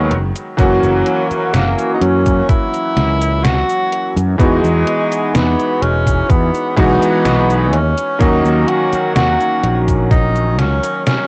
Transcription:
0.00 0.12 D#2 loud
0.00 0.13 D#3 loud
0.00 0.13 F#3 medium
0.00 0.12 G#3 medium
0.00 0.11 B3 loud
0.00 0.12 B3 medium
0.00 0.12 F#4 loud
0.11 0.31 F#1 medium
0.11 closed hi-hat medium
0.36 closed hi-hat medium
0.36 cabasa medium
0.57 0.79 F#1 medium
0.57 3.38 E3 medium
0.57 3.38 F#3 medium
0.57 1.55 F#3 loud
0.57 3.39 A#3 medium
0.57 3.39 C#4 medium
0.57 3.40 F#4 loud
0.57 kick loud
0.57 closed hi-hat medium
0.57 cabasa soft
0.83 1.02 F#1 medium
0.83 cabasa soft
1.06 closed hi-hat medium
1.31 muted fretless electric bass stroke soft
1.31 closed hi-hat medium
1.31 cabasa medium
1.54 1.74 F#1 medium
1.54 1.93 A#3 loud
1.54 snare loud
1.54 closed hi-hat medium
1.54 cabasa soft
1.79 closed hi-hat soft
1.79 cabasa soft
1.94 2.03 D#4 medium
2.01 2.40 F#2 medium
2.01 2.48 C#4 loud
2.01 closed hi-hat medium
2.26 kick medium
2.26 closed hi-hat medium
2.26 cabasa medium
2.49 3.45 E4 loud
2.49 kick loud
2.49 closed hi-hat medium
2.49 cabasa soft
2.74 closed hi-hat soft
2.74 cabasa soft
2.96 3.61 C#2 loud
2.96 snare medium
2.96 closed hi-hat medium
3.21 closed hi-hat medium
3.21 cabasa medium
3.44 4.16 F#4 loud
3.44 snare loud
3.44 closed hi-hat medium
3.44 cabasa soft
3.69 closed hi-hat soft
3.69 cabasa soft
3.92 closed hi-hat medium
4.16 4.35 F#2 medium
4.16 closed hi-hat medium
4.16 cabasa medium
4.38 4.59 E2 loud
4.38 6.71 E3 medium
4.38 6.72 G#3 medium
4.38 5.36 G#3 loud
4.38 6.72 B3 medium
4.38 6.72 D#4 medium
4.38 6.73 F#4 medium
4.38 kick loud
4.38 closed hi-hat medium
4.38 cabasa soft
4.64 4.83 E2 medium
4.64 cabasa soft
4.87 closed hi-hat medium
5.12 closed hi-hat medium
5.12 cabasa medium
5.35 5.55 E2 medium
5.35 5.84 B3 loud
5.35 snare loud
5.35 closed hi-hat medium
5.35 cabasa soft
5.60 closed hi-hat soft
5.60 cabasa soft
5.82 6.21 E1 medium
5.82 6.31 C#4 loud
5.82 closed hi-hat medium
6.07 kick medium
6.07 closed hi-hat medium
6.07 cabasa medium
6.30 6.50 E2 loud
6.30 6.77 B3 loud
6.30 kick loud
6.30 closed hi-hat medium
6.30 cabasa soft
6.55 closed hi-hat soft
6.55 cabasa soft
6.77 6.98 B1 medium
6.77 7.17 E3 loud
6.77 7.17 G#3 medium
6.77 7.74 B3 loud
6.77 7.17 B3 medium
6.77 7.17 D#4 medium
6.77 7.17 F#4 loud
6.77 kick loud
6.77 closed hi-hat medium
7.02 closed hi-hat medium
7.02 cabasa medium
7.25 7.73 B1 loud
7.25 snare loud
7.25 closed hi-hat medium
7.25 cabasa soft
7.50 closed hi-hat soft
7.50 cabasa soft
7.73 7.93 D#2 medium
7.73 8.22 C#4 loud
7.73 closed hi-hat medium
7.97 closed hi-hat medium
7.97 cabasa medium
8.19 8.40 D#2 loud
8.19 11.00 D#3 medium
8.19 11.00 F#3 medium
8.19 11.01 A#3 medium
8.19 11.01 C#4 medium
8.19 8.69 D#4 loud
8.19 11.01 F#4 medium
8.19 kick loud
8.19 closed hi-hat medium
8.19 cabasa soft
8.45 8.64 D#2 medium
8.45 cabasa soft
8.68 9.15 F#4 loud
8.68 closed hi-hat medium
8.93 muted fretless electric bass stroke soft
8.93 closed hi-hat medium
8.93 cabasa medium
9.15 9.36 D#2 medium
9.15 9.80 F#4 loud
9.15 snare loud
9.15 closed hi-hat medium
9.15 cabasa soft
9.40 closed hi-hat soft
9.40 cabasa soft
9.63 10.59 A#1 medium
9.63 closed hi-hat medium
9.88 kick medium
9.88 closed hi-hat medium
9.88 cabasa medium
10.11 10.60 D#4 loud
10.11 kick loud
10.11 closed hi-hat medium
10.11 cabasa soft
10.36 closed hi-hat soft
10.36 cabasa soft
10.59 10.79 C#2 loud
10.59 11.06 C#4 loud
10.59 snare medium
10.59 closed hi-hat medium
10.83 closed hi-hat medium
10.83 cabasa medium
11.07 11.27 C#4 loud
11.07 snare loud
11.07 closed hi-hat medium
11.07 cabasa soft

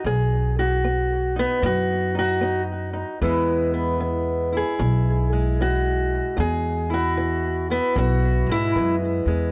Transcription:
0.00 0.40 B4 soft
0.04 1.44 B1 medium
0.04 0.79 B2 medium
0.04 0.59 G#4 medium
0.59 1.38 F#4 medium
0.84 1.38 B3 medium
1.36 1.65 B3 medium
1.36 2.14 D#4 soft
1.62 3.02 F#2 loud
1.62 2.38 B2 medium
1.62 2.18 F#4 loud
2.15 2.41 D#4 soft
2.15 2.61 F#4 loud
2.41 3.16 B3 medium
2.41 2.92 D#4 medium
2.93 3.19 D#4 soft
3.21 4.61 E2 medium
3.21 3.96 E2 medium
3.21 4.00 E3 soft
3.21 5.32 G#3 medium
3.21 3.73 B3 medium
3.21 4.52 E4 medium
3.74 4.56 B3 medium
4.00 4.75 E3 medium
4.52 6.89 E4 soft
4.57 5.61 G#4 loud
4.79 6.19 B1 loud
4.79 5.54 B2 medium
5.33 8.48 G#3 soft
5.61 6.34 E3 medium
5.61 6.39 F#4 loud
6.37 7.12 E2 medium
6.37 7.78 E2 loud
6.37 6.92 G#4 loud
6.90 7.69 E4 soft
6.90 7.71 F#4 loud
7.17 7.92 E3 medium
7.70 7.98 B3 loud
7.70 8.50 E4 soft
7.96 8.42 B1 loud
7.96 8.71 B2 medium
7.96 8.51 F#4 loud
8.46 8.73 G#2 medium
8.46 9.26 G#3 soft
8.51 8.95 E4 loud
8.75 9.23 F#2 medium
8.75 9.50 E3 medium
8.75 9.52 B3 soft
9.26 9.52 E2 medium
9.26 9.52 G#3 medium

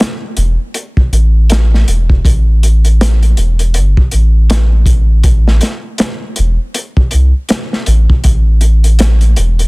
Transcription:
0.01 snare loud
0.37 0.57 E1 medium
0.37 closed hi-hat medium
0.74 closed hi-hat medium
0.97 kick medium
1.12 1.84 A1 loud
1.12 closed hi-hat medium
1.50 snare loud
1.50 closed hi-hat loud
1.74 snare soft
1.88 2.21 E1 medium
1.88 closed hi-hat medium
2.10 kick medium
2.25 3.35 A1 medium
2.25 kick loud
2.25 closed hi-hat medium
2.63 closed hi-hat medium
2.85 closed hi-hat soft
3.01 snare loud
3.01 closed hi-hat loud
3.23 closed hi-hat soft
3.37 3.78 E1 medium
3.37 closed hi-hat medium
3.59 closed hi-hat soft
3.74 3.95 G1 loud
3.74 closed hi-hat medium
3.97 kick loud
4.11 5.60 A1 loud
4.11 closed hi-hat medium
4.50 snare loud
4.50 closed hi-hat loud
4.86 kick medium
4.86 closed hi-hat medium
5.23 kick medium
5.23 closed hi-hat medium
5.48 snare medium
5.61 snare medium
5.61 closed hi-hat medium
5.98 snare loud
5.98 closed hi-hat medium
6.36 6.58 E1 loud
6.36 closed hi-hat medium
6.74 closed hi-hat medium
6.97 kick medium
7.11 7.33 C2 medium
7.11 closed hi-hat medium
7.49 snare loud
7.49 closed hi-hat medium
7.73 snare soft
7.86 8.07 A1 medium
7.86 closed hi-hat medium
8.10 kick medium
8.24 9.35 A1 medium
8.24 kick loud
8.24 closed hi-hat medium
8.61 closed hi-hat medium
8.84 closed hi-hat soft
8.99 snare loud
8.99 closed hi-hat medium
9.21 closed hi-hat soft
9.36 9.68 E1 loud
9.36 closed hi-hat medium
9.59 closed hi-hat soft

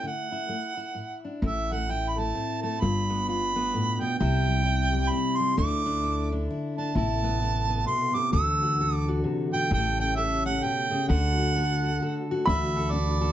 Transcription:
0.00 0.46 D3 medium
0.00 0.48 A3 soft
0.00 0.31 E4 soft
0.07 1.26 F#5 medium
0.32 0.76 E4 medium
0.49 0.92 A3 soft
0.77 1.42 E4 medium
0.95 1.38 A2 soft
1.25 1.41 D4 soft
1.42 2.31 A1 medium
1.42 2.81 A2 medium
1.42 1.88 E4 medium
1.42 1.74 E5 medium
1.72 2.17 A3 soft
1.72 1.93 F#5 medium
1.89 2.81 E4 medium
1.89 2.10 G5 medium
2.08 2.20 B5 medium
2.18 2.62 A3 medium
2.18 2.62 A5 medium
2.35 2.79 C4 medium
2.63 2.79 A3 medium
2.63 2.82 A5 medium
2.81 3.70 G1 medium
2.81 4.17 G2 medium
2.81 3.27 F4 medium
2.81 3.27 B5 medium
3.10 3.54 B3 medium
3.28 4.18 F4 medium
3.28 4.03 B5 medium
3.56 4.18 B3 medium
3.74 4.01 A2 medium
4.01 4.19 B2 medium
4.01 4.18 G5 medium
4.19 5.08 C2 medium
4.19 5.56 C3 medium
4.19 4.65 E4 medium
4.19 5.11 G5 medium
4.47 4.92 G3 medium
4.66 5.58 E4 medium
4.93 5.38 G3 medium
5.10 5.55 C4 medium
5.10 5.38 B5 medium
5.36 5.57 G3 medium
5.36 5.56 C6 loud
5.57 6.46 D2 medium
5.57 6.95 D3 medium
5.57 7.23 A3 medium
5.57 5.84 D4 medium
5.57 6.03 E4 medium
5.57 6.45 D6 medium
5.86 6.31 D4 medium
6.03 6.50 E4 medium
6.32 6.77 D4 soft
6.50 6.95 E4 medium
6.78 6.94 D4 medium
6.78 6.95 A5 medium
6.95 7.83 A1 medium
6.95 7.86 A2 medium
6.95 8.33 C3 medium
6.95 8.33 B3 medium
6.95 7.41 E4 medium
6.95 8.33 A4 medium
6.95 7.84 A5 medium
7.24 7.68 B3 medium
7.42 8.34 E4 medium
7.69 8.31 B3 medium
7.86 8.14 B2 medium
7.86 8.16 C6 medium
8.14 8.33 C3 medium
8.14 8.32 D6 medium
8.32 9.21 D2 medium
8.32 9.72 D3 medium
8.32 9.69 E3 medium
8.32 9.69 D4 medium
8.32 9.69 F#4 medium
8.32 8.80 A4 medium
8.32 8.96 E6 loud
8.63 9.07 F#4 medium
8.81 9.73 A4 medium
8.96 9.21 D6 loud
9.08 9.70 F#4 medium
9.24 9.53 C3 medium
9.53 9.71 B2 medium
9.53 9.70 G5 loud
9.71 10.59 A1 medium
9.71 10.63 A2 medium
9.71 11.08 C#3 medium
9.71 11.07 A3 medium
9.71 11.08 G4 medium
9.71 10.17 A4 medium
9.71 9.98 G5 loud
10.00 10.45 C#4 medium
10.00 10.16 G5 loud
10.16 11.09 A4 medium
10.16 10.43 E5 loud
10.46 11.08 C#4 medium
10.46 10.65 F#5 medium
10.63 10.90 B2 medium
10.63 11.08 G5 loud
10.91 11.09 C#3 medium
11.08 11.98 D2 loud
11.08 12.46 D3 medium
11.08 12.47 D3 medium
11.08 12.46 A3 medium
11.08 12.46 F#4 medium
11.08 11.55 A4 medium
11.08 12.25 F#5 loud
11.38 11.83 F#4 medium
11.56 12.01 A4 medium
11.84 12.30 F#4 medium
12.02 12.46 A4 medium
12.31 12.46 F#4 medium
12.45 13.32 D2 loud
12.45 12.90 D3 medium
12.45 13.32 E3 medium
12.45 13.32 D4 medium
12.45 13.32 F#4 medium
12.45 12.93 E5 medium
12.45 13.32 B5 loud
12.77 13.20 A4 medium
12.91 13.32 D4 medium
12.91 13.32 D5 medium
13.21 13.32 A4 medium

